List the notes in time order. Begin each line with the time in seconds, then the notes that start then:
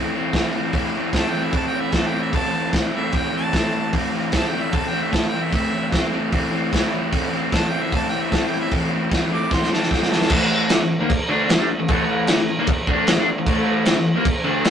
Already playing: A2 E3 A3 C4 E4
0.14 A3 C4 E4
0.33 A2 E3 A3, kick, snare, open hi-hat
0.37 C4 E4
0.54 C4 E4
0.58 A3
0.73 A2 E3 A3 C4 E4, kick, open hi-hat
0.93 A3 C4 E4
1.13 E3 A3 C4 E4 A5, kick, snare, open hi-hat
1.31 C4 E4 G5
1.35 A2 E3 A3
1.44 E5
1.53 E3 A3 C4 E4 A5, kick, open hi-hat
1.68 G5
1.74 A3 C4 E4
1.81 E5
1.92 A2 E3 A3 C4 E4 A5, kick, snare, open hi-hat
2.09 E4 G5
2.13 A3 C4
2.22 E5
2.31 A2 E3 A3 C4 E4 A5, kick, open hi-hat
2.52 A3 C4 E4
2.72 E3 A3 C4 E4, kick, snare, open hi-hat
2.93 A2 E3 A3 C4 E4 E5
3.12 E3 A3 C4 E4, kick, open hi-hat
3.16 G5
3.33 A3 C4 E4 A5
3.52 A2 E3 A3 C4 E4, kick, snare, open hi-hat
3.73 A3 C4 E4
3.93 A2 E3 A3 C4 E4, kick, open hi-hat
4.13 C4 E4
4.17 A3
4.32 E3 A3 C4 E4, kick, snare, open hi-hat
4.37 A5
4.48 G5
4.53 A2 E3 A3 C4 E4
4.62 E5
4.71 E3 A3 C4 E4 A5, kick, open hi-hat
4.88 E4 G5
4.93 A3 C4
5.03 E5
5.12 A2 E3 A3 C4 E4 A5, kick, snare, open hi-hat
5.28 E4 G5
5.34 A3 C4
5.43 E5
5.51 A2 E3 A3 C4 E4 E5, kick, open hi-hat
5.72 A3 C4 E4
5.92 E3 A3 C4 E4, kick, snare, open hi-hat
6.11 A2 E3 A3 C4 E4
6.31 E3 A3 C4 E4, kick, open hi-hat
6.51 A3 C4 E4
6.71 A2 E3 A3 C4 E4, kick, snare, open hi-hat
6.92 A3 C4 E4
7.12 A2 E3 A3 C4 E4, kick, open hi-hat
7.33 A3 C4 E4
7.52 E3 A3 C4 E4 A5, kick, snare, open hi-hat
7.68 E4 G5
7.73 A2 E3 A3 C4
7.82 E5
7.92 E3 A3 C4 E4 A5, kick, open hi-hat
8.09 E4 G5
8.15 A3 C4
8.23 E5
8.31 A2 E3 A3 C4 E4, kick, snare, open hi-hat
8.35 A5
8.47 G5
8.52 A3 C4 E4
8.61 E5
8.71 A2 E3 A3 C4 E4, kick, open hi-hat
8.91 A3 C4 E4
9.09 E3 A3 C4, kick, snare, open hi-hat
9.14 E4
9.30 A2 E3 A3 C4 E4
9.34 D6
9.50 E3 A3 C4 E4 C6, kick, snare
9.63 snare
9.70 A3 C4 E4 A5, snare
9.83 snare
9.89 A2 E3 A3 C4 E4 G5, kick, snare
10.02 snare
10.10 A3 C4 E4 A5, snare
10.21 snare
10.30 A2 E3 A3, kick, crash
10.69 D3 A3, snare, crash
10.81 A2 E3
11.00 D#3 A#3
11.10 muted overdriven electric guitar stroke, kick, crash
11.29 D3 A3 D4
11.48 A2 E3, snare, crash
11.58 G3 D4
11.69 muted overdriven electric guitar stroke
11.79 A2 E3
11.88 A2 E3 A3, kick, crash
12.27 D3 A3, snare, crash
12.41 A2 E3
12.59 D#3 A#3
12.67 kick, crash
12.72 muted overdriven electric guitar stroke
12.87 D3 A3 D4, kick
13.07 A2 E3, snare, crash
13.19 G3 D4
13.29 muted overdriven electric guitar stroke
13.38 A2 E3
13.46 A2 E3 A3, kick, crash
13.85 D3 A3, snare, crash
13.97 A2 E3
14.15 D#3 A#3
14.25 muted overdriven electric guitar stroke, kick, crash
14.45 D3 A3 D4
14.64 A2 E3, snare, crash